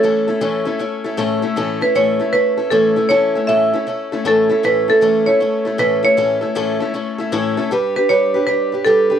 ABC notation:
X:1
M:4/4
L:1/8
Q:"Swing" 1/4=156
K:Amix
V:1 name="Marimba"
A2 z6 | z B c2 B2 A2 | c2 e2 z2 A2 | B A2 c3 B c- |
c2 z6 | z B c2 B2 A2 |]
V:2 name="Steel-string acoustic guitar"
[A,,E,A,CEA] [A,CEA] [A,,E,A,CEA] [A,CEA] [A,CEA] [A,CEA] [A,,E,A,CEA] [A,CEA] | [A,,E,A,CEA] [A,CEA] [A,,E,A,CEA] [A,CEA] [A,CEA] [A,CEA] [A,,E,A,CEA] [A,CEA] | [A,,E,A,CEA] [A,CEA] [A,,E,A,CEA] [A,CEA] [A,CEA] [A,CEA] [A,,E,A,CEA] [A,CEA] | [A,,E,A,CEA] [A,CEA] [A,,E,A,CEA] [A,CEA] [A,CEA] [A,CEA] [A,,E,A,CEA] [A,CEA] |
[A,,E,A,CEA] [A,CEA] [A,,E,A,CEA] [A,CEA] [A,CEA] [A,CEA] [A,,E,A,CEA] [A,CEA] | [G,DGB] [DGB] [G,DGB] [DGB] [G,DGB] [DGB] [G,DGB] [DGB] |]